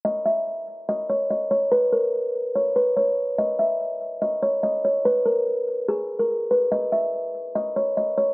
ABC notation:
X:1
M:4/4
L:1/16
Q:1/4=144
K:Elyd
V:1 name="Kalimba"
d2 e6 d2 c2 d2 c2 | B2 A6 c2 B2 c4 | d2 e6 d2 c2 d2 c2 | B2 A6 G3 A3 B2 |
d2 e6 d2 c2 d2 c2 |]